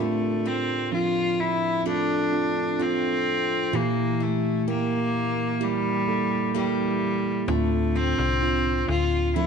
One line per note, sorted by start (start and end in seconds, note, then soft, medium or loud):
0.00 1.35 A2 soft
0.00 3.73 D3 medium
0.00 0.48 A3 medium
0.00 0.87 C4 medium
0.00 0.87 D4 medium
0.00 0.87 F4 medium
0.00 0.19 G4 soft
0.00 0.19 A#4 soft
0.46 2.79 C4 soft
0.46 0.93 C4 medium
0.91 1.81 F3 medium
0.91 1.81 C4 soft
0.91 1.81 D4 soft
0.91 1.42 F4 medium
1.40 1.86 E4 medium
1.85 2.78 A3 medium
1.85 2.30 C4 soft
1.85 2.30 D4 soft
1.85 2.83 D4 medium
1.85 2.30 F4 medium
2.32 2.77 C4 medium
2.32 2.77 D4 soft
2.32 2.77 F4 medium
2.79 3.83 A3 soft
2.79 3.68 C4 medium
2.79 3.83 C4 soft
2.79 3.78 C4 medium
2.79 3.69 D4 medium
2.79 3.69 F4 medium
2.79 3.83 F4 soft
3.73 4.62 A#2 medium
3.73 5.10 E3 soft
3.73 7.48 E3 medium
3.73 4.24 A#3 medium
3.73 4.62 E4 medium
3.73 4.63 G4 medium
4.20 4.68 A3 medium
4.20 6.54 E4 soft
4.67 5.56 A#3 soft
4.67 5.65 A#3 medium
4.67 5.56 E4 soft
4.67 6.54 G4 soft
4.67 5.57 A#4 medium
5.60 6.56 G3 medium
5.60 6.05 A#3 medium
5.60 6.53 A#3 medium
5.60 6.05 E4 soft
5.60 6.05 G4 medium
6.07 6.52 A#3 medium
6.07 6.52 E4 soft
6.07 6.53 A4 medium
6.54 7.45 G3 medium
6.54 7.58 A#3 soft
6.54 7.44 A#3 medium
6.54 7.44 E4 medium
6.54 7.58 E4 soft
6.54 7.44 G4 medium
6.54 7.58 G4 soft
7.48 8.14 D2 medium
7.48 8.85 A2 soft
7.48 9.47 D3 medium
7.48 7.98 A3 medium
7.48 8.37 C4 medium
7.48 8.38 D4 medium
7.48 8.38 F4 medium
7.95 9.47 C4 soft
7.95 8.89 C4 medium
8.18 8.85 C2 medium
8.42 9.31 C4 medium
8.42 9.31 D4 medium
8.42 9.31 F4 medium
8.88 9.47 D2 medium
8.88 9.33 F4 medium
9.36 9.47 F3 medium
9.36 9.47 A3 medium
9.36 9.47 C4 medium
9.36 9.47 D4 medium
9.36 9.47 E4 medium